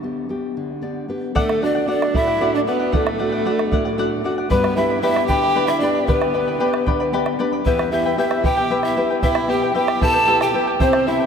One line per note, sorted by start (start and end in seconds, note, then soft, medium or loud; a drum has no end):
0.00 0.29 D3 medium
0.00 0.28 B3 soft
0.00 0.29 D4 soft
0.04 0.29 G4 medium
0.29 0.72 B3 soft
0.29 0.72 D4 soft
0.29 0.72 G4 medium
0.57 1.08 D3 medium
0.82 1.07 B3 soft
0.82 1.08 D4 soft
0.82 1.08 G4 soft
0.82 1.07 D5 medium
1.09 1.30 B3 soft
1.09 1.31 D4 soft
1.09 1.31 G4 soft
1.09 1.34 B4 medium
1.35 1.86 D3 medium
1.35 1.65 A3 medium
1.35 1.60 A4 medium
1.35 1.65 A4 medium
1.35 1.61 D5 medium
1.35 1.61 F#5 medium
1.35 bombo low medium
1.49 bombo rim medium
1.61 1.86 A3 soft
1.61 1.86 D4 soft
1.61 1.89 D4 medium
1.61 1.87 F#4 medium
1.61 1.75 A4 medium
1.61 1.75 D5 medium
1.61 1.89 D5 medium
1.61 1.74 F#5 medium
1.75 1.87 D5 soft
1.75 1.87 F#5 medium
1.87 2.30 A3 soft
1.87 2.30 D4 soft
1.87 2.17 D4 medium
1.87 2.30 F#4 medium
1.87 2.13 A4 medium
1.87 2.14 D5 medium
1.87 2.18 D5 loud
1.87 2.14 F#5 medium
2.02 bombo rim medium
2.14 2.65 A2 medium
2.14 2.54 E4 medium
2.14 2.27 A4 medium
2.14 2.27 D5 medium
2.14 2.55 E5 loud
2.14 2.26 F#5 medium
2.14 bombo low medium
2.27 2.40 D5 soft
2.27 2.41 F#5 medium
2.40 2.65 A3 soft
2.40 2.66 D4 soft
2.40 2.66 F#4 medium
2.40 2.66 A4 medium
2.40 2.66 D5 medium
2.40 2.67 F#5 medium
2.55 2.61 D4 medium
2.55 2.61 D5 medium
2.67 3.09 A3 soft
2.67 2.95 B3 medium
2.67 3.09 D4 soft
2.67 3.09 F#4 medium
2.67 2.80 A4 medium
2.67 2.96 B4 medium
2.67 2.80 D5 medium
2.67 2.78 F#5 medium
2.80 2.91 D5 soft
2.80 2.92 F#5 soft
2.92 3.44 A2 medium
2.92 3.98 A3 medium
2.92 3.17 A4 medium
2.92 3.99 A4 medium
2.92 3.18 D5 medium
2.92 3.18 F#5 medium
2.92 bombo low medium
3.07 bombo rim medium
3.18 3.44 A3 soft
3.18 3.44 D4 soft
3.18 3.45 F#4 medium
3.18 3.32 A4 medium
3.18 3.32 D5 medium
3.18 3.31 F#5 medium
3.32 3.45 D5 soft
3.32 3.45 F#5 medium
3.45 3.87 A3 medium
3.45 3.88 D4 soft
3.45 3.88 F#4 medium
3.45 3.70 A4 medium
3.45 3.71 D5 medium
3.45 3.72 F#5 medium
3.59 bombo rim medium
3.72 4.23 A2 medium
3.72 3.85 A4 medium
3.72 3.85 D5 medium
3.72 3.84 F#5 medium
3.72 bombo low medium
3.85 3.98 D5 soft
3.85 3.98 F#5 medium
3.98 4.23 A3 soft
3.98 4.24 D4 soft
3.98 4.24 F#4 soft
3.98 4.23 A4 medium
3.98 4.24 D5 medium
3.98 4.25 F#5 medium
4.24 4.45 A3 soft
4.24 4.46 D4 soft
4.24 4.46 F#4 medium
4.24 4.37 A4 medium
4.24 4.38 D5 medium
4.24 4.37 F#5 medium
4.38 4.50 D5 soft
4.38 4.51 F#5 soft
4.50 5.01 G2 medium
4.50 4.77 B3 medium
4.50 4.77 G4 medium
4.50 4.78 B4 loud
4.50 4.76 B4 medium
4.50 4.76 D5 medium
4.50 4.76 G5 medium
4.50 4.77 B5 medium
4.50 bombo low medium
4.64 bombo rim medium
4.76 5.01 B3 soft
4.76 5.02 D4 soft
4.76 5.01 E4 medium
4.76 5.02 G4 medium
4.76 4.90 B4 medium
4.76 4.90 D5 medium
4.76 5.01 E5 medium
4.76 4.90 G5 soft
4.76 4.89 B5 medium
4.90 5.02 B4 medium
4.90 5.02 D5 soft
4.90 5.03 B5 medium
5.02 5.45 B3 medium
5.02 5.45 D4 medium
5.02 5.27 E4 medium
5.02 5.29 G4 medium
5.02 5.45 G4 medium
5.02 5.28 B4 medium
5.02 5.29 D5 medium
5.02 5.27 E5 loud
5.02 5.28 G5 medium
5.02 5.29 B5 loud
5.16 bombo rim medium
5.27 5.80 D3 medium
5.27 5.68 G4 medium
5.27 5.42 B4 medium
5.27 5.42 D5 medium
5.27 5.68 G5 loud
5.27 5.42 G5 medium
5.27 5.41 B5 medium
5.27 bombo low medium
5.43 5.55 B4 soft
5.43 5.55 D5 soft
5.43 5.55 B5 medium
5.55 5.80 B3 soft
5.55 5.81 D4 soft
5.55 5.82 G4 medium
5.55 5.81 G4 medium
5.55 5.82 B4 medium
5.55 5.82 D5 medium
5.55 5.81 G5 medium
5.55 5.82 B5 medium
5.67 5.81 E4 medium
5.67 5.82 E5 loud
5.67 bombo rim medium
5.80 6.24 B3 medium
5.80 6.06 D4 medium
5.80 6.24 D4 medium
5.80 6.24 G4 medium
5.80 5.95 B4 medium
5.80 6.06 D5 medium
5.80 5.94 D5 medium
5.80 5.95 G5 medium
5.80 5.94 B5 medium
5.95 6.07 B4 soft
5.95 6.08 D5 soft
5.95 6.08 B5 medium
6.06 6.58 D3 medium
6.06 7.08 B3 medium
6.06 6.34 G4 medium
6.06 7.08 B4 medium
6.06 6.33 B4 medium
6.06 6.34 D5 medium
6.06 6.33 G5 medium
6.06 6.34 B5 medium
6.06 bombo low medium
6.22 bombo rim medium
6.34 6.59 B3 medium
6.34 6.59 D4 soft
6.34 6.59 G4 medium
6.34 6.47 B4 soft
6.34 6.47 D5 medium
6.34 6.47 G5 medium
6.34 6.46 B5 medium
6.34 bombo rim soft
6.48 6.59 B4 soft
6.48 6.59 D5 soft
6.48 6.60 B5 soft
6.60 7.02 B3 medium
6.60 7.02 D4 soft
6.60 6.86 G4 medium
6.60 7.02 G4 medium
6.60 6.86 B4 medium
6.60 6.86 D5 medium
6.60 6.85 G5 medium
6.60 6.87 B5 medium
6.74 bombo rim medium
6.86 7.37 D3 medium
6.86 7.00 B4 medium
6.86 7.00 D5 medium
6.86 6.99 G5 medium
6.86 6.99 B5 medium
6.86 bombo low medium
7.00 7.12 B4 soft
7.00 7.13 D5 medium
7.00 7.13 B5 medium
7.00 bombo rim soft
7.12 7.38 B3 soft
7.12 7.38 D4 soft
7.12 7.39 G4 medium
7.12 7.39 B4 medium
7.12 7.39 D5 medium
7.12 7.37 E5 medium
7.12 7.38 G5 medium
7.12 7.39 B5 medium
7.26 bombo rim medium
7.39 7.60 B3 medium
7.39 7.60 D4 soft
7.39 7.60 G4 medium
7.39 7.52 B4 medium
7.39 7.63 D5 medium
7.39 7.52 D5 medium
7.39 7.52 G5 medium
7.39 7.51 B5 medium
7.53 7.66 B4 soft
7.53 7.66 D5 soft
7.53 7.65 B5 medium
7.65 8.16 E2 medium
7.65 7.90 B3 medium
7.65 7.92 E4 medium
7.65 7.92 G4 medium
7.65 7.90 B4 medium
7.65 7.92 B4 medium
7.65 7.91 E5 medium
7.65 7.92 G5 medium
7.65 bombo low medium
7.79 bombo rim medium
7.91 8.16 B3 soft
7.91 8.16 E4 soft
7.91 8.16 E4 medium
7.91 8.05 E4 soft
7.91 8.17 G4 medium
7.91 8.05 B4 medium
7.91 8.16 E5 medium
7.91 8.05 E5 medium
7.91 8.04 G5 medium
8.05 8.17 E4 soft
8.05 8.17 B4 soft
8.05 8.18 G5 soft
8.18 8.59 B3 soft
8.18 8.59 E4 soft
8.18 8.43 E4 medium
8.18 8.47 E4 medium
8.18 8.60 G4 medium
8.18 8.44 G4 medium
8.18 8.44 B4 medium
8.18 8.43 E5 medium
8.18 8.46 E5 medium
8.18 8.45 G5 medium
8.31 bombo rim medium
8.44 8.94 B2 medium
8.44 8.57 E4 medium
8.44 8.84 G4 medium
8.44 8.57 B4 medium
8.44 8.57 E5 medium
8.44 8.83 G5 loud
8.44 8.56 G5 medium
8.44 bombo low medium
8.57 8.70 E4 soft
8.57 8.70 B4 soft
8.57 8.70 G5 medium
8.70 8.96 B3 soft
8.70 8.96 E4 soft
8.70 8.96 E4 medium
8.70 8.96 G4 medium
8.70 8.97 B4 medium
8.70 8.95 E5 medium
8.70 8.97 G5 medium
8.83 9.08 E4 medium
8.83 9.08 E5 medium
8.83 bombo rim medium
8.97 9.38 B3 medium
8.97 9.38 E4 soft
8.97 9.10 E4 medium
8.97 9.39 G4 medium
8.97 9.10 B4 medium
8.97 9.09 E5 medium
8.97 9.09 G5 medium
9.10 9.22 E4 soft
9.10 9.22 B4 soft
9.10 9.22 G5 medium
9.23 9.74 B2 medium
9.23 9.48 E4 medium
9.23 9.51 E4 medium
9.23 9.49 G4 medium
9.23 9.48 B4 medium
9.23 9.47 E5 medium
9.23 9.52 E5 medium
9.23 9.48 G5 medium
9.23 bombo low medium
9.35 bombo rim medium
9.48 9.73 B3 soft
9.48 9.73 E4 soft
9.48 9.62 E4 medium
9.48 9.74 G4 medium
9.48 9.75 G4 medium
9.48 9.61 B4 medium
9.48 9.61 E5 medium
9.48 9.61 G5 medium
9.48 9.76 G5 medium
9.62 9.74 E4 soft
9.62 9.74 B4 soft
9.62 9.75 G5 soft
9.74 10.16 B3 medium
9.74 10.17 E4 soft
9.74 10.01 E4 medium
9.74 10.01 G4 medium
9.74 10.03 G4 medium
9.74 10.17 G4 medium
9.74 10.01 B4 medium
9.74 10.00 E5 medium
9.74 10.01 G5 medium
9.74 10.04 G5 loud
9.88 bombo rim medium
10.01 10.52 B2 medium
10.01 10.14 E4 medium
10.01 10.44 A4 medium
10.01 10.13 B4 medium
10.01 10.14 E5 medium
10.01 10.12 G5 medium
10.01 10.43 A5 loud
10.01 bombo low medium
10.13 10.27 E4 soft
10.13 10.27 B4 medium
10.13 10.27 G5 medium
10.27 10.53 B3 soft
10.27 10.53 E4 soft
10.27 10.53 E4 medium
10.27 10.53 G4 medium
10.27 10.54 G4 medium
10.27 10.54 B4 medium
10.27 10.52 E5 medium
10.27 10.54 G5 medium
10.41 10.67 G4 medium
10.41 10.67 G5 loud
10.41 bombo rim medium
10.54 10.75 B3 soft
10.54 10.67 E4 medium
10.54 10.74 E4 soft
10.54 10.75 G4 medium
10.54 10.67 B4 medium
10.54 10.66 E5 medium
10.54 10.66 G5 medium
10.67 10.79 E4 soft
10.67 10.80 B4 soft
10.67 10.80 G5 soft
10.80 11.26 C3 medium
10.80 11.10 C4 medium
10.80 11.06 E4 medium
10.80 11.06 G4 medium
10.80 11.09 C5 loud
10.80 11.06 C5 medium
10.80 11.05 E5 medium
10.80 11.06 G5 medium
10.80 bombo low medium
10.93 bombo rim medium
11.06 11.26 C4 medium
11.06 11.26 E4 soft
11.06 11.19 E4 medium
11.06 11.26 E4 medium
11.06 11.26 G4 medium
11.06 11.20 C5 medium
11.06 11.19 E5 medium
11.06 11.26 E5 loud
11.06 11.19 G5 medium
11.20 11.26 E4 soft
11.20 11.26 C5 soft
11.20 11.26 G5 medium